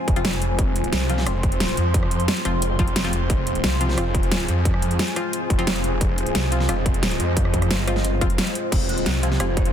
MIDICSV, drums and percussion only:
0, 0, Header, 1, 2, 480
1, 0, Start_track
1, 0, Key_signature, -4, "minor"
1, 0, Tempo, 338983
1, 831, Time_signature, 4, 2, 24, 8
1, 13775, End_track
2, 0, Start_track
2, 0, Title_t, "Drums"
2, 110, Note_on_c, 9, 36, 115
2, 111, Note_on_c, 9, 42, 69
2, 230, Note_off_c, 9, 42, 0
2, 230, Note_on_c, 9, 42, 37
2, 251, Note_off_c, 9, 36, 0
2, 350, Note_off_c, 9, 42, 0
2, 350, Note_on_c, 9, 38, 127
2, 350, Note_on_c, 9, 42, 99
2, 470, Note_off_c, 9, 42, 0
2, 470, Note_on_c, 9, 42, 37
2, 491, Note_off_c, 9, 38, 0
2, 590, Note_off_c, 9, 42, 0
2, 590, Note_on_c, 9, 42, 72
2, 732, Note_off_c, 9, 42, 0
2, 830, Note_on_c, 9, 36, 126
2, 830, Note_on_c, 9, 42, 90
2, 972, Note_off_c, 9, 36, 0
2, 972, Note_off_c, 9, 42, 0
2, 1071, Note_on_c, 9, 42, 66
2, 1191, Note_off_c, 9, 42, 0
2, 1191, Note_on_c, 9, 42, 36
2, 1311, Note_off_c, 9, 42, 0
2, 1311, Note_on_c, 9, 38, 127
2, 1311, Note_on_c, 9, 42, 96
2, 1452, Note_off_c, 9, 38, 0
2, 1452, Note_off_c, 9, 42, 0
2, 1551, Note_on_c, 9, 42, 66
2, 1671, Note_on_c, 9, 38, 39
2, 1692, Note_off_c, 9, 42, 0
2, 1792, Note_on_c, 9, 37, 59
2, 1792, Note_on_c, 9, 42, 96
2, 1812, Note_off_c, 9, 38, 0
2, 1933, Note_off_c, 9, 37, 0
2, 1933, Note_off_c, 9, 42, 0
2, 2030, Note_on_c, 9, 42, 67
2, 2031, Note_on_c, 9, 36, 114
2, 2152, Note_off_c, 9, 42, 0
2, 2152, Note_on_c, 9, 42, 38
2, 2172, Note_off_c, 9, 36, 0
2, 2271, Note_off_c, 9, 42, 0
2, 2271, Note_on_c, 9, 38, 127
2, 2271, Note_on_c, 9, 42, 93
2, 2391, Note_off_c, 9, 42, 0
2, 2391, Note_on_c, 9, 42, 38
2, 2412, Note_off_c, 9, 38, 0
2, 2512, Note_off_c, 9, 42, 0
2, 2512, Note_on_c, 9, 42, 63
2, 2653, Note_off_c, 9, 42, 0
2, 2751, Note_on_c, 9, 36, 125
2, 2751, Note_on_c, 9, 42, 87
2, 2871, Note_on_c, 9, 37, 35
2, 2892, Note_off_c, 9, 36, 0
2, 2893, Note_off_c, 9, 42, 0
2, 2991, Note_on_c, 9, 42, 65
2, 3012, Note_off_c, 9, 37, 0
2, 3111, Note_off_c, 9, 42, 0
2, 3111, Note_on_c, 9, 42, 37
2, 3231, Note_off_c, 9, 42, 0
2, 3231, Note_on_c, 9, 38, 127
2, 3231, Note_on_c, 9, 42, 92
2, 3350, Note_off_c, 9, 42, 0
2, 3350, Note_on_c, 9, 42, 37
2, 3372, Note_off_c, 9, 38, 0
2, 3471, Note_off_c, 9, 42, 0
2, 3471, Note_on_c, 9, 37, 35
2, 3471, Note_on_c, 9, 42, 65
2, 3612, Note_off_c, 9, 37, 0
2, 3612, Note_off_c, 9, 42, 0
2, 3710, Note_on_c, 9, 42, 90
2, 3852, Note_off_c, 9, 42, 0
2, 3951, Note_on_c, 9, 36, 115
2, 3951, Note_on_c, 9, 42, 66
2, 4071, Note_off_c, 9, 42, 0
2, 4071, Note_on_c, 9, 42, 36
2, 4092, Note_off_c, 9, 36, 0
2, 4191, Note_off_c, 9, 42, 0
2, 4191, Note_on_c, 9, 38, 127
2, 4191, Note_on_c, 9, 42, 95
2, 4311, Note_off_c, 9, 42, 0
2, 4311, Note_on_c, 9, 42, 35
2, 4332, Note_off_c, 9, 38, 0
2, 4431, Note_off_c, 9, 42, 0
2, 4431, Note_on_c, 9, 42, 63
2, 4573, Note_off_c, 9, 42, 0
2, 4671, Note_on_c, 9, 36, 118
2, 4671, Note_on_c, 9, 42, 87
2, 4812, Note_off_c, 9, 36, 0
2, 4812, Note_off_c, 9, 42, 0
2, 4911, Note_on_c, 9, 42, 66
2, 5031, Note_off_c, 9, 42, 0
2, 5031, Note_on_c, 9, 42, 37
2, 5151, Note_off_c, 9, 42, 0
2, 5151, Note_on_c, 9, 38, 123
2, 5151, Note_on_c, 9, 42, 93
2, 5293, Note_off_c, 9, 38, 0
2, 5293, Note_off_c, 9, 42, 0
2, 5391, Note_on_c, 9, 42, 64
2, 5511, Note_on_c, 9, 38, 36
2, 5532, Note_off_c, 9, 42, 0
2, 5630, Note_on_c, 9, 37, 55
2, 5630, Note_on_c, 9, 42, 92
2, 5652, Note_off_c, 9, 38, 0
2, 5772, Note_off_c, 9, 37, 0
2, 5772, Note_off_c, 9, 42, 0
2, 5869, Note_on_c, 9, 36, 107
2, 5871, Note_on_c, 9, 42, 66
2, 5991, Note_off_c, 9, 42, 0
2, 5991, Note_on_c, 9, 42, 37
2, 6011, Note_off_c, 9, 36, 0
2, 6111, Note_off_c, 9, 42, 0
2, 6111, Note_on_c, 9, 38, 127
2, 6111, Note_on_c, 9, 42, 93
2, 6231, Note_off_c, 9, 42, 0
2, 6231, Note_on_c, 9, 42, 36
2, 6252, Note_off_c, 9, 38, 0
2, 6350, Note_off_c, 9, 42, 0
2, 6350, Note_on_c, 9, 42, 67
2, 6492, Note_off_c, 9, 42, 0
2, 6589, Note_on_c, 9, 36, 116
2, 6590, Note_on_c, 9, 42, 94
2, 6710, Note_on_c, 9, 37, 33
2, 6731, Note_off_c, 9, 36, 0
2, 6732, Note_off_c, 9, 42, 0
2, 6830, Note_on_c, 9, 42, 68
2, 6852, Note_off_c, 9, 37, 0
2, 6950, Note_off_c, 9, 42, 0
2, 6950, Note_on_c, 9, 42, 38
2, 7070, Note_off_c, 9, 42, 0
2, 7070, Note_on_c, 9, 38, 123
2, 7070, Note_on_c, 9, 42, 94
2, 7190, Note_off_c, 9, 42, 0
2, 7190, Note_on_c, 9, 42, 37
2, 7212, Note_off_c, 9, 38, 0
2, 7311, Note_off_c, 9, 42, 0
2, 7311, Note_on_c, 9, 37, 32
2, 7311, Note_on_c, 9, 42, 68
2, 7452, Note_off_c, 9, 37, 0
2, 7452, Note_off_c, 9, 42, 0
2, 7551, Note_on_c, 9, 42, 89
2, 7692, Note_off_c, 9, 42, 0
2, 7790, Note_on_c, 9, 36, 102
2, 7791, Note_on_c, 9, 42, 69
2, 7911, Note_off_c, 9, 42, 0
2, 7911, Note_on_c, 9, 42, 38
2, 7931, Note_off_c, 9, 36, 0
2, 8031, Note_off_c, 9, 42, 0
2, 8031, Note_on_c, 9, 38, 127
2, 8031, Note_on_c, 9, 42, 101
2, 8150, Note_off_c, 9, 42, 0
2, 8150, Note_on_c, 9, 42, 37
2, 8172, Note_off_c, 9, 38, 0
2, 8270, Note_off_c, 9, 42, 0
2, 8270, Note_on_c, 9, 42, 66
2, 8412, Note_off_c, 9, 42, 0
2, 8510, Note_on_c, 9, 36, 112
2, 8511, Note_on_c, 9, 42, 96
2, 8652, Note_off_c, 9, 36, 0
2, 8652, Note_off_c, 9, 42, 0
2, 8751, Note_on_c, 9, 42, 72
2, 8871, Note_off_c, 9, 42, 0
2, 8871, Note_on_c, 9, 42, 40
2, 8991, Note_off_c, 9, 42, 0
2, 8991, Note_on_c, 9, 38, 114
2, 8991, Note_on_c, 9, 42, 98
2, 9133, Note_off_c, 9, 38, 0
2, 9133, Note_off_c, 9, 42, 0
2, 9231, Note_on_c, 9, 42, 69
2, 9351, Note_on_c, 9, 38, 35
2, 9372, Note_off_c, 9, 42, 0
2, 9471, Note_on_c, 9, 37, 55
2, 9471, Note_on_c, 9, 42, 94
2, 9493, Note_off_c, 9, 38, 0
2, 9613, Note_off_c, 9, 37, 0
2, 9613, Note_off_c, 9, 42, 0
2, 9711, Note_on_c, 9, 36, 105
2, 9712, Note_on_c, 9, 42, 72
2, 9831, Note_off_c, 9, 42, 0
2, 9831, Note_on_c, 9, 42, 37
2, 9852, Note_off_c, 9, 36, 0
2, 9951, Note_off_c, 9, 42, 0
2, 9951, Note_on_c, 9, 38, 119
2, 9951, Note_on_c, 9, 42, 101
2, 10072, Note_off_c, 9, 42, 0
2, 10072, Note_on_c, 9, 42, 37
2, 10093, Note_off_c, 9, 38, 0
2, 10192, Note_off_c, 9, 42, 0
2, 10192, Note_on_c, 9, 42, 67
2, 10334, Note_off_c, 9, 42, 0
2, 10430, Note_on_c, 9, 36, 118
2, 10432, Note_on_c, 9, 42, 99
2, 10552, Note_on_c, 9, 37, 35
2, 10572, Note_off_c, 9, 36, 0
2, 10573, Note_off_c, 9, 42, 0
2, 10670, Note_on_c, 9, 36, 65
2, 10672, Note_on_c, 9, 42, 73
2, 10693, Note_off_c, 9, 37, 0
2, 10791, Note_off_c, 9, 42, 0
2, 10791, Note_on_c, 9, 37, 36
2, 10791, Note_on_c, 9, 42, 42
2, 10812, Note_off_c, 9, 36, 0
2, 10912, Note_off_c, 9, 42, 0
2, 10912, Note_on_c, 9, 38, 121
2, 10912, Note_on_c, 9, 42, 97
2, 10933, Note_off_c, 9, 37, 0
2, 11053, Note_off_c, 9, 38, 0
2, 11053, Note_off_c, 9, 42, 0
2, 11151, Note_on_c, 9, 37, 37
2, 11151, Note_on_c, 9, 42, 71
2, 11271, Note_on_c, 9, 38, 35
2, 11293, Note_off_c, 9, 37, 0
2, 11293, Note_off_c, 9, 42, 0
2, 11392, Note_on_c, 9, 42, 94
2, 11413, Note_off_c, 9, 38, 0
2, 11533, Note_off_c, 9, 42, 0
2, 11630, Note_on_c, 9, 36, 106
2, 11632, Note_on_c, 9, 42, 68
2, 11752, Note_off_c, 9, 42, 0
2, 11752, Note_on_c, 9, 42, 39
2, 11772, Note_off_c, 9, 36, 0
2, 11871, Note_off_c, 9, 42, 0
2, 11871, Note_on_c, 9, 38, 119
2, 11871, Note_on_c, 9, 42, 103
2, 11992, Note_off_c, 9, 42, 0
2, 11992, Note_on_c, 9, 42, 39
2, 12012, Note_off_c, 9, 38, 0
2, 12111, Note_off_c, 9, 42, 0
2, 12111, Note_on_c, 9, 42, 72
2, 12253, Note_off_c, 9, 42, 0
2, 12350, Note_on_c, 9, 36, 121
2, 12351, Note_on_c, 9, 42, 98
2, 12351, Note_on_c, 9, 49, 79
2, 12491, Note_off_c, 9, 36, 0
2, 12493, Note_off_c, 9, 42, 0
2, 12493, Note_off_c, 9, 49, 0
2, 12591, Note_on_c, 9, 42, 71
2, 12711, Note_off_c, 9, 42, 0
2, 12711, Note_on_c, 9, 42, 41
2, 12831, Note_off_c, 9, 42, 0
2, 12831, Note_on_c, 9, 38, 126
2, 12831, Note_on_c, 9, 42, 99
2, 12972, Note_off_c, 9, 38, 0
2, 12972, Note_off_c, 9, 42, 0
2, 13071, Note_on_c, 9, 42, 71
2, 13192, Note_on_c, 9, 38, 36
2, 13213, Note_off_c, 9, 42, 0
2, 13311, Note_on_c, 9, 37, 59
2, 13311, Note_on_c, 9, 42, 95
2, 13333, Note_off_c, 9, 38, 0
2, 13452, Note_off_c, 9, 37, 0
2, 13452, Note_off_c, 9, 42, 0
2, 13550, Note_on_c, 9, 36, 109
2, 13551, Note_on_c, 9, 42, 70
2, 13671, Note_off_c, 9, 42, 0
2, 13671, Note_on_c, 9, 42, 40
2, 13692, Note_off_c, 9, 36, 0
2, 13775, Note_off_c, 9, 42, 0
2, 13775, End_track
0, 0, End_of_file